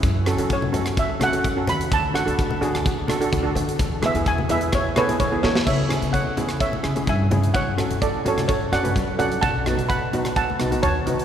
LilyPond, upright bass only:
\new Staff \with { instrumentName = "Upright bass" } { \clef bass \time 4/4 \key fis \minor \tempo 4 = 128 fis,8. fis,2 r16 fis,8 dis,8 | d,8. d,2 r16 d,8 d8 | e,8. e,2 r16 e,8 e8 | cis8. cis8 r4 r16 cis16 r16 g,4 |
fis,8. fis,8 r4 r16 fis,16 r16 fis4 | b,,8. b,,8 r4 r16 b,,16 r16 dis,4 | }